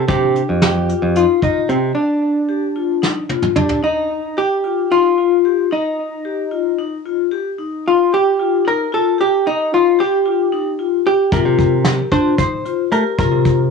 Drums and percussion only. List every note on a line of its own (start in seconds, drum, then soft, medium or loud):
0.09 kick loud
0.09 closed hi-hat medium
0.36 closed hi-hat medium
0.62 snare medium
0.62 closed hi-hat medium
0.89 closed hi-hat medium
1.16 closed hi-hat medium
1.42 kick medium
1.42 closed hi-hat soft
1.69 closed hi-hat soft
3.03 snare medium
3.29 high tom medium
3.42 mid tom medium
3.56 mid tom medium
3.69 floor tom medium
11.32 kick loud
11.32 closed hi-hat medium
11.59 kick medium
11.59 closed hi-hat medium
11.85 snare medium
11.85 closed hi-hat medium
12.12 kick medium
12.12 closed hi-hat medium
12.38 kick medium
12.38 closed hi-hat medium
12.65 closed hi-hat soft
12.92 closed hi-hat medium
13.18 kick loud
13.18 closed hi-hat medium
13.45 kick medium
13.45 closed hi-hat medium